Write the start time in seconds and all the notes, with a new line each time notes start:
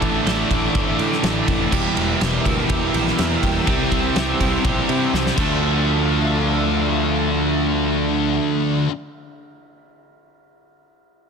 Already playing: A2 D3 E3 A3 D4 E4 A4 D5 E5 A5 D6
0.02 A1 A3, kick, ride
0.26 A1 A2 E3 A3 A4, snare, ride
0.49 A1 E3 A3 D4, kick, ride
0.74 G1 A2 E3 A3 A4, kick, ride
0.99 A2 D4, ride
1.12 snare
1.23 A1 A2 E3 A3, snare, ride
1.48 F1 E3, kick, ride
1.71 E1 E2 B2 E3 G3 A#3 E4 G4 A#4 G5 E6, kick, crash
1.75 E3
1.97 E1 A#3, ride
2.20 E1 E2 B2 E3 G4, snare, ride
2.45 D2 B2 E3 E4, kick, ride
2.69 E1 E2 B2 E3 G4, kick, ride
2.94 A#1 E4, ride
3.07 snare
3.18 E2 B2 E3 A#3, snare, ride
3.43 E1 G3, kick, ride
3.67 C2 C3 E3 G3 C4 E4 G4 C5, kick, ride
3.92 C2 C4, kick, ride
4.15 C2 C3 G3 C4 G4, snare, ride
4.39 C2 G3 C4 E4, kick, ride
4.64 A#1 C3 G3 C4 G4, kick, ride
4.89 C3 E4, ride
5.13 C2 C3 G3 C4, snare
5.26 snare
5.36 D2 D3 F3 A3 D4 A4 E5 F5, kick, crash
5.40 D4 F4 A4